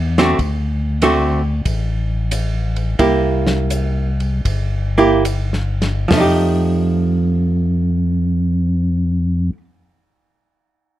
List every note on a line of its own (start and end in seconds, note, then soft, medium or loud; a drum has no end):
0.00 0.35 E2 medium
0.18 0.37 D3 medium
0.18 0.37 A3 medium
0.18 0.37 C4 medium
0.18 0.38 F#4 medium
0.18 snare medium
0.18 ride soft
0.39 1.62 D2 medium
0.39 kick soft
0.39 ride medium
1.02 1.40 D3 medium
1.02 1.40 A3 medium
1.02 1.41 C4 medium
1.02 1.41 F#4 medium
1.02 hi-hat pedal soft
1.02 ride medium
1.65 2.95 A1 medium
1.65 kick soft
1.65 ride medium
2.31 hi-hat pedal medium
2.31 ride medium
2.76 ride soft
2.99 4.41 C2 medium
2.99 4.10 A#3 medium
2.99 4.10 E4 medium
2.99 4.10 G4 medium
2.99 kick soft
2.99 ride medium
3.47 snare soft
3.70 hi-hat pedal medium
3.70 ride medium
4.20 ride soft
4.45 6.07 G1 medium
4.45 kick soft
4.45 ride medium
4.98 5.22 A#3 medium
4.98 5.23 E4 medium
4.98 5.23 G4 medium
5.25 hi-hat pedal medium
5.25 ride medium
5.53 snare soft
5.82 snare soft
5.82 ride soft
6.08 9.50 F2 medium
6.08 9.52 F3 medium
6.08 snare medium
6.08 floor tom medium
6.08 open hi-hat medium
6.13 9.57 A3 medium
6.13 9.61 D#4 medium
6.20 9.64 G4 medium